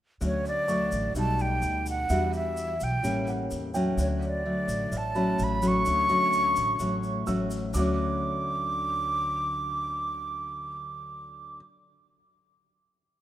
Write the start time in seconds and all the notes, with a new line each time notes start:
0.21 D2 D3 F#3 A3 C#4, shaker
0.25 C#5
0.45 D5, shaker
0.68 F#3 A3 C#6, shaker
0.92 A1, shaker
1.15 B1 B2 G3 A3 D#4 A5, shaker
1.39 G5, shaker
1.62 D2, shaker
1.86 F#5, shaker
2.09 E2 E3 G3 D4 F#4 E5, shaker
2.33 E5, shaker
2.57 shaker
2.80 B1 G5, shaker
3.03 A1 A2 G3 A#3 C#4, shaker
3.27 F#5, shaker
3.51 E2, shaker
3.74 F#3 A3 C#4 G5, shaker
3.97 D2 D3, shaker
4.01 C#5
4.22 D5, shaker
4.45 F#3 A3
4.68 A1, shaker
4.91 A1 A2, shaker
4.97 A5
5.15 F#3 A3 C#4 B5, shaker
5.39 A1, shaker
5.43 B5
5.62 F#3 A3 C#4, shaker
5.68 C#6
5.85 D2 D3, shaker
6.09 F#3 A3 C#4 C#6, shaker
6.33 shaker
6.56 A1, shaker
6.79 A1 A2 F#3 A3 C#4, shaker
7.03 shaker
7.27 A1 F#3 A3 C#4 E6, shaker
7.51 shaker
7.73 D2 D3 F#3 D6, shaker
7.77 A3 C#4